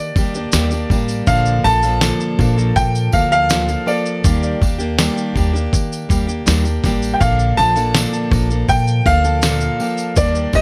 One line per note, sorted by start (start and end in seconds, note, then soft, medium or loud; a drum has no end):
0.00 0.16 A#3 soft
0.00 0.17 D4 soft
0.00 0.16 G4 soft
0.00 0.86 D5 medium
0.16 0.46 D#2 medium
0.16 0.35 G3 medium
0.16 0.35 A#3 medium
0.16 0.35 D4 medium
0.16 0.34 G4 medium
0.16 kick medium
0.16 tambourine soft
0.34 0.53 A#3 soft
0.34 0.53 D4 medium
0.34 0.53 G4 medium
0.34 shaker medium
0.52 0.83 D#2 medium
0.52 0.72 D#3 medium
0.52 0.72 G3 medium
0.52 0.72 A#3 medium
0.52 0.72 D4 medium
0.52 0.71 G4 medium
0.52 snare loud
0.52 tambourine medium
0.52 shaker medium
0.71 0.89 A#3 medium
0.71 0.90 D4 medium
0.71 0.90 G4 medium
0.71 tambourine soft
0.71 shaker soft
0.90 1.20 A1 medium
0.90 1.27 G3 medium
0.90 1.27 A#3 medium
0.90 1.27 D4 medium
0.90 1.28 G4 medium
0.90 kick medium
0.90 tambourine soft
1.08 tambourine soft
1.08 shaker medium
1.27 1.58 A#1 loud
1.27 1.64 A#2 medium
1.27 1.65 D3 medium
1.27 1.63 F3 medium
1.27 1.64 A#3 medium
1.27 1.65 D4 medium
1.27 1.65 A4 medium
1.27 1.62 F5 loud
1.27 kick loud
1.27 tambourine medium
1.27 shaker medium
1.46 shaker soft
1.64 2.10 A#1 medium
1.64 1.83 F3 medium
1.64 1.83 A#3 medium
1.64 1.84 D4 medium
1.64 1.83 A4 medium
1.64 2.79 A5 loud
1.64 tambourine medium
1.82 2.01 F3 soft
1.82 2.01 A#3 soft
1.82 2.02 D4 soft
1.82 2.02 A4 medium
1.82 tambourine soft
1.82 shaker medium
2.01 2.39 A#2 medium
2.01 2.39 D3 medium
2.01 2.38 F3 medium
2.01 2.38 A#3 medium
2.01 2.39 D4 medium
2.01 2.39 A4 medium
2.01 snare loud
2.01 tambourine medium
2.01 shaker medium
2.20 shaker soft
2.39 2.69 A#1 loud
2.39 2.57 F3 medium
2.39 2.56 A#3 medium
2.39 2.56 D4 medium
2.39 2.55 A4 medium
2.39 kick medium
2.39 tambourine soft
2.57 3.11 F3 soft
2.57 3.12 A#3 soft
2.57 3.12 D4 medium
2.57 3.12 A4 medium
2.57 shaker soft
2.76 3.06 A#2 loud
2.76 3.10 G5 loud
2.76 kick medium
2.76 tambourine soft
2.76 shaker medium
2.95 tambourine soft
2.95 shaker medium
3.12 3.74 D2 medium
3.12 3.31 F3 medium
3.12 3.31 A#3 medium
3.12 3.30 D4 medium
3.12 3.29 A4 medium
3.12 3.30 F5 medium
3.12 kick medium
3.12 tambourine medium
3.30 3.49 F3 soft
3.30 3.49 A#3 soft
3.30 3.49 D4 soft
3.30 3.49 A4 soft
3.30 3.89 F5 loud
3.30 shaker medium
3.50 3.68 A#2 medium
3.50 3.68 D3 medium
3.50 3.68 F3 medium
3.50 3.68 A#3 medium
3.50 3.68 D4 medium
3.50 3.66 A4 medium
3.50 snare loud
3.50 tambourine loud
3.50 shaker medium
3.68 3.85 F3 soft
3.68 3.86 A#3 soft
3.68 3.86 D4 soft
3.68 3.86 A4 medium
3.68 tambourine soft
3.68 shaker soft
3.86 4.23 F3 medium
3.86 4.23 A#3 medium
3.86 4.24 D4 medium
3.86 4.24 A4 medium
3.86 4.57 D5 medium
3.86 tambourine soft
4.06 shaker medium
4.24 4.55 D#2 loud
4.24 4.61 D#3 medium
4.24 4.59 G3 medium
4.24 4.60 A#3 medium
4.24 4.61 D4 medium
4.24 4.61 G4 medium
4.24 kick loud
4.24 tambourine medium
4.24 shaker medium
4.43 shaker soft
4.60 5.07 D#2 medium
4.60 4.79 G3 medium
4.60 4.79 A#3 medium
4.60 4.79 D4 medium
4.60 4.77 G4 medium
4.60 kick medium
4.60 tambourine soft
4.79 4.98 A#3 soft
4.79 4.98 D4 medium
4.79 4.97 G4 medium
4.79 shaker medium
4.98 5.35 D#3 medium
4.98 5.34 G3 medium
4.98 5.35 A#3 medium
4.98 5.35 D4 medium
4.98 5.36 G4 loud
4.98 snare loud
4.98 tambourine medium
4.98 shaker medium
5.17 shaker soft
5.35 5.66 D#2 medium
5.35 5.54 G3 medium
5.35 5.54 A#3 medium
5.35 5.53 D4 medium
5.35 5.52 G4 medium
5.35 kick medium
5.35 tambourine soft
5.53 6.09 A#3 soft
5.53 6.09 D4 medium
5.53 6.09 G4 medium
5.53 shaker soft
5.73 6.03 D#3 medium
5.73 kick medium
5.73 tambourine soft
5.73 shaker medium
5.92 tambourine soft
5.92 shaker medium
6.09 6.40 D#2 medium
6.09 6.28 G3 medium
6.09 6.28 A#3 medium
6.09 6.27 D4 medium
6.09 6.26 G4 medium
6.09 kick medium
6.09 tambourine soft
6.09 shaker medium
6.27 6.46 A#3 soft
6.27 6.46 D4 medium
6.27 6.46 G4 medium
6.27 shaker medium
6.46 6.77 D#2 medium
6.46 6.65 D#3 medium
6.46 6.65 G3 loud
6.46 6.65 A#3 medium
6.46 6.64 D4 loud
6.46 6.63 G4 medium
6.46 snare loud
6.46 tambourine medium
6.46 shaker medium
6.64 6.83 A#3 soft
6.64 6.84 D4 soft
6.64 6.83 G4 medium
6.64 tambourine soft
6.64 shaker soft
6.84 7.14 A1 medium
6.84 7.20 G3 medium
6.84 7.20 A#3 medium
6.84 7.21 D4 medium
6.84 7.21 G4 medium
6.84 kick loud
6.84 snare soft
6.84 tambourine soft
6.84 shaker soft
7.02 tambourine soft
7.02 shaker medium
7.14 7.20 G5 medium
7.20 7.51 A#1 loud
7.20 7.57 A#2 medium
7.20 7.58 D3 medium
7.20 7.57 F3 medium
7.20 7.57 A#3 medium
7.20 7.58 D4 medium
7.20 7.58 A4 medium
7.20 7.58 F5 medium
7.20 kick loud
7.20 tambourine soft
7.20 shaker medium
7.39 shaker soft
7.57 8.04 A#1 medium
7.57 7.76 F3 medium
7.57 7.76 A#3 medium
7.57 7.76 D4 medium
7.57 7.74 A4 medium
7.57 8.27 A5 loud
7.57 tambourine soft
7.76 7.94 F3 soft
7.76 7.94 A#3 soft
7.76 7.94 D4 medium
7.76 7.94 A4 medium
7.76 tambourine soft
7.76 shaker medium
7.94 8.31 A#2 medium
7.94 8.31 D3 medium
7.94 8.30 F3 medium
7.94 8.30 A#3 medium
7.94 8.31 D4 medium
7.94 8.32 A4 medium
7.94 snare loud
7.94 tambourine medium
7.94 shaker medium
8.13 shaker soft
8.31 8.62 A#1 loud
8.31 8.50 F3 medium
8.31 8.50 A#3 medium
8.31 8.49 D4 medium
8.31 8.49 A4 medium
8.31 kick medium
8.31 tambourine soft
8.50 9.04 F3 soft
8.50 9.05 A#3 medium
8.50 9.06 D4 soft
8.50 9.06 A4 medium
8.50 shaker soft
8.68 8.99 A#2 loud
8.68 9.07 G5 loud
8.68 kick medium
8.68 tambourine soft
8.68 shaker medium
8.87 shaker medium
9.05 9.66 D2 loud
9.05 9.24 F3 medium
9.05 9.24 A#3 medium
9.05 9.24 D4 medium
9.05 9.23 A4 medium
9.05 10.13 F5 loud
9.05 kick medium
9.05 tambourine medium
9.24 9.42 F3 soft
9.24 9.43 A#3 soft
9.24 9.43 D4 soft
9.24 9.43 A4 soft
9.24 shaker soft
9.42 9.80 A#2 medium
9.42 9.80 D3 medium
9.42 9.78 F3 medium
9.42 9.80 A#3 medium
9.42 9.80 D4 medium
9.42 9.80 A4 medium
9.42 snare loud
9.42 tambourine medium
9.42 shaker medium
9.60 tambourine soft
9.60 shaker soft
9.80 10.16 F3 medium
9.80 10.16 A#3 medium
9.80 10.16 D4 medium
9.80 10.17 A4 medium
9.80 tambourine soft
9.97 tambourine soft
9.97 shaker medium
10.16 10.47 D#2 loud
10.16 10.53 D#3 medium
10.16 10.52 G3 medium
10.16 10.52 A#3 medium
10.16 10.53 D4 medium
10.16 10.54 G4 medium
10.16 10.51 D5 medium
10.16 kick loud
10.16 tambourine soft
10.16 shaker medium
10.35 shaker soft
10.53 10.62 D#2 medium
10.53 10.62 G3 medium
10.53 10.62 A#3 medium
10.53 10.62 D4 medium
10.53 10.62 G4 medium
10.53 10.62 D#5 loud
10.53 kick loud
10.53 tambourine soft